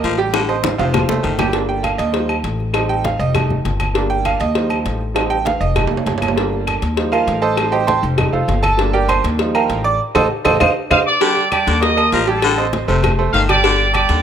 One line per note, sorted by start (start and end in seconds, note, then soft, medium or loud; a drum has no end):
0.00 0.73 A1 medium
0.00 0.19 F3 medium
0.00 0.13 A#3 medium
0.00 0.13 A#4 medium
0.00 0.13 D#5 medium
0.00 low agogo medium
0.04 cowbell medium
0.04 high conga soft
0.18 0.43 G3 medium
0.18 0.43 G4 loud
0.18 0.43 G5 medium
0.18 high conga soft
0.33 0.57 D3 medium
0.33 cowbell loud
0.33 high bongo medium
0.33 high conga soft
0.33 low agogo loud
0.33 claves medium
0.49 0.73 C4 medium
0.49 0.74 C5 medium
0.49 0.73 D#5 medium
0.49 high conga soft
0.49 low agogo medium
0.64 cowbell medium
0.64 high bongo loud
0.64 high conga loud
0.64 high timbale medium
0.78 1.07 F1 medium
0.78 1.02 C3 medium
0.78 1.03 F3 medium
0.78 1.03 F4 medium
0.78 1.03 F5 medium
0.78 high conga soft
0.78 high timbale loud
0.78 low agogo medium
0.94 cowbell loud
0.94 low bongo loud
0.94 high conga soft
0.94 low conga medium
0.94 low agogo loud
0.94 claves medium
1.09 1.23 F1 medium
1.09 1.33 A3 medium
1.09 1.34 A4 medium
1.09 1.34 C5 medium
1.09 low bongo medium
1.09 high conga soft
1.09 low timbale medium
1.23 1.94 G1 medium
1.23 1.39 D#3 medium
1.23 cowbell medium
1.23 high conga medium
1.23 low agogo medium
1.39 1.51 G3 medium
1.39 1.51 G4 medium
1.39 1.51 G5 medium
1.39 cowbell medium
1.39 low bongo medium
1.39 high conga medium
1.39 low timbale loud
1.39 low agogo loud
1.39 claves medium
1.53 2.11 G3 medium
1.53 2.11 A#3 medium
1.53 2.12 D4 medium
1.53 cowbell loud
1.53 high conga soft
1.53 low agogo medium
1.69 1.84 G5 medium
1.69 high conga soft
1.83 1.98 F5 medium
1.83 cowbell medium
1.83 high conga medium
1.83 low agogo loud
1.83 claves medium
1.98 2.41 D#2 medium
1.98 2.27 D#5 medium
1.98 cowbell medium
1.98 high conga soft
1.98 low agogo medium
2.12 2.33 F3 medium
2.12 2.34 G3 medium
2.12 2.34 D#4 medium
2.12 cowbell loud
2.12 high conga soft
2.29 high conga soft
2.29 low agogo loud
2.29 claves medium
2.44 3.14 A1 medium
2.44 cowbell medium
2.44 high conga soft
2.44 low agogo medium
2.60 high conga soft
2.73 3.31 G3 medium
2.73 3.31 C4 medium
2.73 3.32 D#4 medium
2.73 cowbell loud
2.73 high conga soft
2.73 low agogo loud
2.73 claves medium
2.89 3.04 G5 loud
2.89 high conga soft
2.89 low agogo medium
3.04 3.19 F5 medium
3.04 cowbell medium
3.04 high conga loud
3.19 3.62 F1 medium
3.19 3.48 D#5 medium
3.19 high conga soft
3.19 low agogo medium
3.35 3.55 G3 medium
3.35 3.55 A3 soft
3.35 3.55 D#4 medium
3.35 cowbell loud
3.35 high conga soft
3.35 low conga medium
3.35 low agogo loud
3.35 claves medium
3.50 high conga soft
3.50 low conga medium
3.65 4.35 G1 medium
3.65 cowbell medium
3.65 high conga medium
3.65 low agogo medium
3.80 cowbell medium
3.80 high conga medium
3.80 low agogo loud
3.80 claves medium
3.94 4.38 G3 medium
3.94 4.38 A#3 medium
3.94 4.38 D4 medium
3.94 cowbell loud
3.94 high conga soft
3.94 low agogo medium
4.10 4.25 G5 loud
4.10 high conga soft
4.25 4.40 F5 medium
4.25 cowbell medium
4.25 high conga medium
4.25 low agogo loud
4.25 claves medium
4.40 4.83 D#2 medium
4.40 4.69 D#5 medium
4.40 cowbell medium
4.40 high conga soft
4.40 low agogo medium
4.55 4.98 F3 medium
4.55 4.98 G3 soft
4.55 4.99 D#4 medium
4.55 cowbell loud
4.55 high conga soft
4.70 high conga soft
4.70 low agogo loud
4.70 claves medium
4.86 5.56 A1 medium
4.86 cowbell medium
4.86 high conga soft
4.86 low agogo medium
5.01 high conga soft
5.14 5.35 G3 medium
5.14 5.36 C4 medium
5.14 5.36 D#4 medium
5.14 cowbell loud
5.14 high conga soft
5.14 high timbale medium
5.14 low agogo loud
5.14 claves medium
5.30 5.45 G5 loud
5.30 high conga soft
5.30 low agogo medium
5.45 5.61 F5 medium
5.45 cowbell medium
5.45 high conga loud
5.45 high timbale medium
5.61 5.89 F1 medium
5.61 5.89 D#5 medium
5.61 high conga soft
5.61 low agogo medium
5.75 6.33 G3 medium
5.75 6.34 A3 medium
5.75 6.34 D#4 medium
5.75 cowbell loud
5.75 high conga soft
5.75 low conga medium
5.75 low agogo loud
5.75 claves medium
5.87 6.05 F1 medium
5.87 low timbale medium
5.92 high conga soft
5.97 low timbale medium
6.06 6.76 G1 medium
6.06 cowbell medium
6.06 high conga medium
6.06 low timbale medium
6.06 low agogo medium
6.18 low timbale loud
6.22 cowbell medium
6.22 high conga medium
6.22 low agogo loud
6.22 claves medium
6.28 low timbale medium
6.36 6.80 G3 medium
6.36 6.80 A#3 medium
6.36 6.80 D4 medium
6.36 cowbell loud
6.36 high conga soft
6.36 low agogo medium
6.53 high conga soft
6.67 cowbell medium
6.67 high conga medium
6.67 low agogo loud
6.67 claves medium
6.82 7.24 D#2 medium
6.82 cowbell medium
6.82 high conga soft
6.82 low agogo medium
6.97 7.54 F3 medium
6.97 7.55 G3 medium
6.97 7.55 D#4 medium
6.97 cowbell loud
6.97 high conga soft
7.12 7.41 F4 medium
7.12 7.40 A#4 medium
7.12 7.40 F5 medium
7.12 high conga soft
7.12 low agogo loud
7.12 claves medium
7.27 7.98 A1 medium
7.27 cowbell medium
7.27 high conga soft
7.27 low agogo medium
7.42 7.71 A4 medium
7.42 7.71 C5 medium
7.42 7.71 D#5 medium
7.42 7.70 A5 loud
7.42 high conga soft
7.56 8.14 G3 medium
7.56 8.15 C4 medium
7.56 8.15 D#4 medium
7.56 cowbell loud
7.56 high conga soft
7.56 low agogo loud
7.56 claves medium
7.72 7.87 G4 medium
7.72 7.86 C5 medium
7.72 7.87 D#5 medium
7.72 7.86 G5 loud
7.72 high conga soft
7.72 low agogo medium
7.87 8.03 C5 medium
7.87 8.03 G5 medium
7.87 8.02 A5 medium
7.87 8.02 C6 loud
7.87 cowbell medium
7.87 high conga loud
8.03 8.31 F1 medium
8.03 high conga soft
8.03 low agogo medium
8.17 8.38 G3 medium
8.17 8.38 A3 medium
8.17 8.38 D#4 medium
8.17 cowbell loud
8.17 high conga soft
8.17 low conga medium
8.17 low agogo loud
8.17 claves medium
8.33 8.47 F1 medium
8.33 8.61 F4 medium
8.33 8.61 A4 medium
8.33 8.62 C5 medium
8.33 8.61 F5 medium
8.33 high conga soft
8.48 9.18 G1 medium
8.48 cowbell medium
8.48 high conga medium
8.48 low timbale medium
8.48 low agogo medium
8.63 8.91 A4 medium
8.63 8.91 A5 loud
8.63 cowbell medium
8.63 high conga medium
8.63 low agogo loud
8.63 claves medium
8.77 9.36 G3 medium
8.77 9.36 A#3 medium
8.77 9.36 D4 medium
8.77 cowbell loud
8.77 high conga soft
8.77 low agogo medium
8.93 9.09 G4 medium
8.93 9.09 A#4 medium
8.93 9.08 D5 medium
8.93 9.08 G5 medium
8.93 high conga soft
9.09 9.24 C5 medium
9.09 9.24 C6 loud
9.09 cowbell medium
9.09 high conga medium
9.09 low agogo loud
9.09 claves medium
9.24 9.67 D#2 loud
9.24 cowbell medium
9.24 high conga soft
9.24 low agogo medium
9.39 9.83 F3 medium
9.39 9.83 G3 medium
9.39 9.83 D#4 medium
9.39 cowbell loud
9.39 high conga soft
9.55 9.83 A#4 medium
9.55 9.83 F5 medium
9.55 9.83 G5 medium
9.55 9.83 A#5 loud
9.55 high conga soft
9.55 low agogo loud
9.55 claves medium
9.69 9.98 A1 medium
9.69 cowbell medium
9.69 high conga soft
9.69 low agogo medium
9.84 9.99 D5 medium
9.84 9.99 D6 loud
9.84 high conga soft
10.15 10.27 A1 loud
10.15 10.25 A4 loud
10.15 10.25 C5 loud
10.15 10.25 D#5 loud
10.15 cowbell loud
10.15 high conga loud
10.15 high timbale loud
10.15 claves loud
10.45 10.57 A1 loud
10.45 10.55 A4 loud
10.45 10.55 C5 loud
10.45 10.55 D#5 loud
10.45 cowbell loud
10.45 high conga loud
10.45 high timbale loud
10.45 claves loud
10.60 10.72 F2 loud
10.60 10.70 C5 loud
10.60 10.70 D#5 loud
10.60 10.70 F5 medium
10.60 cowbell medium
10.60 high conga loud
10.60 high timbale loud
10.60 claves loud
10.91 11.02 F2 medium
10.91 11.00 C5 loud
10.91 11.00 D#5 medium
10.91 11.00 F5 loud
10.91 10.99 F5 loud
10.91 cowbell loud
10.91 high conga loud
10.91 high timbale loud
10.91 claves loud
11.06 11.48 D5 loud
11.06 11.49 D6 medium
11.21 11.45 D3 loud
11.21 11.46 G3 medium
11.21 11.46 G4 medium
11.21 11.46 G5 medium
11.21 cowbell loud
11.21 high conga soft
11.21 low agogo medium
11.37 high conga soft
11.51 11.76 G3 medium
11.51 11.77 G4 medium
11.51 11.79 D5 loud
11.51 11.77 G5 medium
11.51 11.80 D6 medium
11.51 cowbell medium
11.51 high conga medium
11.51 low agogo loud
11.51 claves medium
11.67 12.09 D#2 loud
11.67 11.90 D3 medium
11.67 cowbell medium
11.67 high conga soft
11.67 low agogo medium
11.80 11.94 A#3 medium
11.80 11.94 A#4 medium
11.80 12.09 D#5 loud
11.80 11.94 D#5 medium
11.80 12.10 D#6 medium
11.80 cowbell loud
11.80 high conga soft
11.97 12.22 A#3 medium
11.97 12.22 A#4 medium
11.97 12.22 D#5 medium
11.97 high conga soft
11.97 low agogo loud
11.97 claves medium
12.11 12.83 A1 medium
12.11 12.28 F3 medium
12.11 12.26 A#4 medium
12.11 12.27 A#5 medium
12.11 cowbell medium
12.11 high conga soft
12.11 low timbale medium
12.11 low agogo medium
12.27 12.52 G3 loud
12.27 12.52 G4 medium
12.27 12.70 A4 medium
12.27 12.52 G5 loud
12.27 12.70 A5 medium
12.27 high conga soft
12.42 12.67 D3 loud
12.42 cowbell loud
12.42 high conga soft
12.42 low agogo loud
12.42 claves medium
12.57 12.82 C4 medium
12.57 12.82 C5 medium
12.57 12.83 D#5 medium
12.57 high conga soft
12.57 low agogo medium
12.73 cowbell medium
12.73 high conga loud
12.88 13.30 F1 loud
12.88 13.12 C3 medium
12.88 13.13 A3 medium
12.88 13.13 A4 medium
12.88 13.13 C5 medium
12.88 high conga soft
12.88 low agogo medium
13.04 cowbell loud
13.04 high conga soft
13.04 low conga medium
13.04 low agogo loud
13.04 claves medium
13.19 13.43 A3 medium
13.19 13.43 A4 medium
13.19 13.43 C5 medium
13.19 high conga soft
13.33 14.04 G1 medium
13.33 13.50 D#3 medium
13.33 13.41 F5 loud
13.33 cowbell medium
13.33 high conga medium
13.33 low agogo medium
13.48 13.61 G3 loud
13.48 13.62 G4 medium
13.48 13.91 D5 loud
13.48 13.62 G5 loud
13.48 13.91 D6 medium
13.48 cowbell medium
13.48 high conga medium
13.48 low agogo loud
13.48 claves medium
13.64 13.88 D3 loud
13.64 13.89 G3 medium
13.64 13.89 G4 medium
13.64 13.89 G5 medium
13.64 cowbell loud
13.64 low agogo medium
13.80 high conga soft
13.93 14.19 G3 medium
13.93 14.19 G4 loud
13.93 14.22 D5 loud
13.93 14.19 G5 medium
13.93 14.22 D6 medium
13.93 cowbell medium
13.93 high conga medium
13.93 low agogo loud
13.93 claves medium
14.09 14.22 D#2 loud
14.09 14.22 D3 medium
14.09 cowbell medium
14.09 high conga soft
14.09 low agogo medium